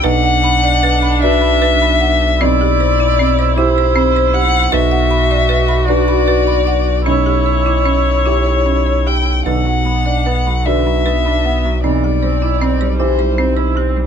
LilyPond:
<<
  \new Staff \with { instrumentName = "Violin" } { \time 6/8 \key b \minor \tempo 4. = 51 fis''4. e''4. | d''4. c''4 fis''8 | e''4. d''4. | cis''2~ cis''8 g''8 |
fis''4. e''4. | d''4. c''4 r8 | }
  \new Staff \with { instrumentName = "Marimba" } { \time 6/8 \key b \minor b'16 fis''16 b''16 d''16 b'16 b''16 d''16 b''16 b'16 b''16 fis''16 r16 | c'16 g'16 c''16 e'16 c'16 c''16 e'16 c''16 c'16 c''16 g'16 r16 | b'16 fis''16 b''16 d''16 b'16 b''16 d''16 b''16 b'16 b''16 fis''16 r16 | cis'16 g'16 cis''16 e'16 cis'16 cis''16 e'16 cis''16 cis'16 cis''16 g'16 r16 |
b'16 fis''16 b''16 d''16 b'16 b''16 d''16 b''16 b'16 b''16 fis''16 r16 | c'16 g'16 c''16 e'16 c'16 c''16 e'16 c''16 c'16 c''16 g'16 r16 | }
  \new Staff \with { instrumentName = "Grand piano" } { \time 6/8 \key b \minor b,,4. <d' fis' b'>4. | b,,4. <e' g' c''>4. | b,,4. <d' fis' b'>4. | b,,4. <e' g' cis''>4. |
b,,4. <d' fis' b'>4. | b,,4. <e' g' c''>4. | }
  \new Staff \with { instrumentName = "Viola" } { \time 6/8 \key b \minor d'2. | e'2. | fis'2. | e'2~ e'8. r16 |
d16 fis16 b16 d'16 b16 fis16 d16 fis16 b16 d'16 b16 fis16 | e16 g16 c'16 e'16 c'16 g16 e16 g16 c'16 e'16 c'16 g16 | }
  \new Staff \with { instrumentName = "Sub bass" } { \clef bass \time 6/8 \key b \minor b,,2.~ | b,,2. | b,,2.~ | b,,2. |
b,,2.~ | b,,2. | }
>>